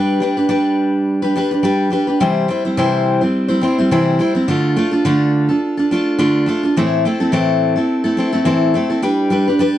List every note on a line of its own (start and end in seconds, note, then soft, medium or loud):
0.00 0.19 G3 medium
0.00 0.20 D4 medium
0.00 0.21 G4 medium
0.00 0.21 B4 medium
0.20 0.36 G3 medium
0.20 0.36 D4 medium
0.20 0.36 G4 medium
0.20 0.36 B4 medium
0.37 0.48 D4 soft
0.37 0.48 G4 soft
0.37 0.49 B4 medium
0.49 1.35 G3 medium
0.49 1.21 D4 medium
0.49 1.24 G4 medium
0.49 1.21 B4 medium
1.22 1.35 D4 soft
1.22 1.35 G4 soft
1.22 1.34 B4 medium
1.36 1.50 G3 medium
1.36 1.51 D4 medium
1.36 1.51 G4 medium
1.36 1.50 B4 medium
1.51 1.63 D4 soft
1.51 1.64 G4 medium
1.51 1.63 B4 medium
1.63 1.89 G3 medium
1.63 1.90 D4 medium
1.63 1.91 G4 medium
1.63 1.92 B4 medium
1.90 2.06 G3 soft
1.90 2.07 D4 medium
1.90 2.07 G4 medium
1.90 2.06 B4 medium
2.07 2.21 D4 soft
2.07 2.20 G4 soft
2.07 2.20 B4 soft
2.20 2.48 C3 medium
2.20 2.49 E3 medium
2.20 2.47 G3 medium
2.20 2.48 C4 medium
2.20 2.49 E4 medium
2.20 2.49 C5 loud
2.48 2.64 G3 medium
2.48 2.64 C4 medium
2.48 2.64 E4 medium
2.48 2.64 C5 medium
2.65 2.76 G3 soft
2.65 2.77 C4 soft
2.65 2.77 E4 medium
2.65 2.77 C5 medium
2.77 3.21 C3 medium
2.77 3.21 E3 medium
2.77 3.21 G3 medium
2.77 3.22 C4 medium
2.77 3.21 E4 medium
2.77 3.20 C5 medium
3.21 3.49 G3 soft
3.21 3.49 C4 soft
3.21 3.48 E4 soft
3.21 3.47 C5 soft
3.48 3.60 G3 soft
3.48 3.62 C4 soft
3.48 3.62 E4 soft
3.48 3.62 C5 medium
3.61 3.77 G3 medium
3.61 3.78 C4 medium
3.61 3.78 E4 medium
3.61 3.77 C5 medium
3.78 3.91 G3 soft
3.78 3.91 C4 medium
3.78 3.91 E4 medium
3.78 3.91 C5 medium
3.91 4.19 C3 medium
3.91 4.20 E3 medium
3.91 4.18 G3 medium
3.91 4.18 C4 medium
3.91 4.19 E4 medium
3.91 4.20 C5 medium
4.19 4.35 G3 medium
4.19 4.35 C4 medium
4.19 4.34 E4 medium
4.19 4.34 C5 medium
4.35 4.48 G3 soft
4.35 4.48 C4 soft
4.35 4.48 E4 medium
4.35 4.48 C5 medium
4.48 4.76 D3 medium
4.48 4.75 A3 medium
4.48 4.76 D4 medium
4.48 4.77 F4 medium
4.48 4.77 A4 medium
4.76 4.92 A3 medium
4.76 4.92 D4 medium
4.76 4.92 F4 medium
4.76 4.90 A4 medium
4.91 5.05 D4 soft
4.91 5.05 F4 soft
4.91 5.04 A4 medium
5.05 5.49 D3 medium
5.05 5.49 A3 medium
5.05 5.49 D4 medium
5.05 5.49 F4 medium
5.05 5.47 A4 medium
5.49 5.78 D4 soft
5.49 5.78 F4 soft
5.49 5.76 A4 soft
5.77 5.91 D4 soft
5.77 5.91 F4 soft
5.77 5.90 A4 medium
5.91 6.18 A3 medium
5.91 6.18 D4 medium
5.91 6.18 F4 medium
5.91 6.19 A4 medium
6.18 6.47 D3 medium
6.18 6.45 A3 medium
6.18 6.46 D4 medium
6.18 6.47 F4 medium
6.18 6.47 A4 medium
6.46 6.62 A3 medium
6.46 6.63 D4 medium
6.46 6.64 F4 medium
6.46 6.62 A4 medium
6.63 6.77 D4 soft
6.63 6.77 F4 medium
6.63 6.76 A4 medium
6.77 7.05 A2 medium
6.77 7.05 E3 medium
6.77 7.04 A3 medium
6.77 7.05 C4 medium
6.77 7.05 E4 medium
6.77 7.06 A4 medium
7.05 7.20 A3 medium
7.05 7.20 C4 medium
7.05 7.19 E4 medium
7.05 7.19 A4 medium
7.20 7.32 A3 soft
7.20 7.32 C4 soft
7.20 7.32 E4 soft
7.20 7.32 A4 medium
7.32 7.76 A2 medium
7.32 7.77 E3 medium
7.32 7.77 A3 medium
7.32 7.77 C4 medium
7.32 7.76 E4 medium
7.32 7.75 A4 medium
7.76 8.05 A3 soft
7.76 8.04 C4 soft
7.76 8.04 E4 soft
7.76 8.03 A4 soft
8.04 8.16 A3 soft
8.04 8.17 C4 soft
8.04 8.18 E4 medium
8.04 8.17 A4 medium
8.17 8.33 A3 medium
8.17 8.33 C4 medium
8.17 8.32 E4 medium
8.17 8.31 A4 medium
8.33 8.44 A3 soft
8.33 8.45 C4 soft
8.33 8.45 E4 medium
8.33 8.46 A4 medium
8.45 8.74 A2 medium
8.45 8.74 E3 medium
8.45 8.73 A3 medium
8.45 8.74 C4 medium
8.45 8.74 E4 medium
8.45 8.75 A4 medium
8.74 8.90 A3 medium
8.74 8.90 C4 medium
8.74 8.89 E4 medium
8.74 8.88 A4 medium
8.90 9.02 A3 soft
8.90 9.02 C4 soft
8.90 9.03 E4 soft
8.90 9.03 A4 soft
9.02 9.29 G3 medium
9.02 9.30 D4 medium
9.02 9.31 G4 medium
9.02 9.31 B4 medium
9.30 9.47 G3 medium
9.30 9.47 D4 medium
9.30 9.48 G4 medium
9.30 9.46 B4 medium
9.48 9.59 D4 soft
9.48 9.59 G4 soft
9.48 9.60 B4 soft
9.59 9.78 G3 medium
9.59 9.78 D4 medium
9.59 9.78 G4 medium
9.59 9.78 B4 medium